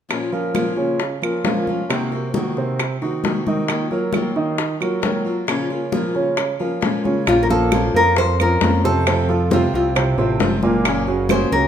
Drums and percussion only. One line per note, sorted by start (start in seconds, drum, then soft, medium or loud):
0.10 high bongo medium
0.10 high conga soft
0.10 claves medium
0.33 high conga soft
0.55 high bongo soft
0.55 high conga medium
0.55 claves medium
0.76 high conga soft
0.99 high bongo medium
0.99 high conga soft
1.22 high conga soft
1.22 claves medium
1.44 high bongo medium
1.44 low bongo medium
1.44 high conga medium
1.67 high conga medium
1.90 high bongo medium
1.90 high conga soft
1.90 claves medium
2.12 high bongo soft
2.12 high conga soft
2.34 high bongo soft
2.34 high conga medium
2.57 high bongo soft
2.57 high conga soft
2.79 high bongo medium
2.79 high conga soft
2.79 claves medium
3.02 high bongo soft
3.02 high conga soft
3.24 high bongo medium
3.24 low bongo medium
3.24 high conga medium
3.47 high conga medium
3.68 high bongo medium
3.68 high conga soft
3.68 claves medium
3.91 high conga soft
4.13 high bongo soft
4.13 high conga medium
4.13 claves medium
4.36 high conga soft
4.58 high bongo medium
4.58 high conga soft
4.81 high conga soft
4.81 claves medium
5.03 high bongo medium
5.03 low bongo medium
5.03 high conga medium
5.48 high bongo medium
5.48 high conga soft
5.48 claves medium
5.70 high bongo soft
5.70 high conga soft
5.92 high bongo soft
5.92 high conga medium
6.15 high bongo soft
6.15 high conga soft
6.37 high bongo medium
6.37 high conga soft
6.37 claves medium
6.60 high bongo soft
6.60 high conga soft
6.82 high bongo medium
6.82 low bongo medium
6.82 high conga medium
7.05 high conga medium
7.27 high bongo medium
7.27 high conga soft
7.27 claves medium
7.50 high conga soft
7.72 high bongo medium
7.72 high conga medium
7.72 claves medium
7.95 high conga soft
8.16 high bongo medium
8.16 high conga soft
8.39 high conga soft
8.39 claves medium
8.61 high bongo medium
8.61 low bongo medium
8.61 high conga medium
9.07 high bongo medium
9.07 high conga soft
9.07 claves medium
9.29 high bongo soft
9.29 high conga soft
9.51 high bongo soft
9.51 high conga medium
9.74 high bongo soft
9.74 high conga soft
9.96 high bongo medium
9.96 high conga soft
9.96 claves medium
10.18 high bongo soft
10.18 high conga soft
10.40 high bongo medium
10.40 low bongo medium
10.40 high conga medium
10.63 high conga medium
10.85 high bongo medium
10.85 high conga soft
10.85 claves medium
11.07 high conga soft
11.29 high bongo medium
11.29 high conga medium
11.29 claves medium
11.52 high conga soft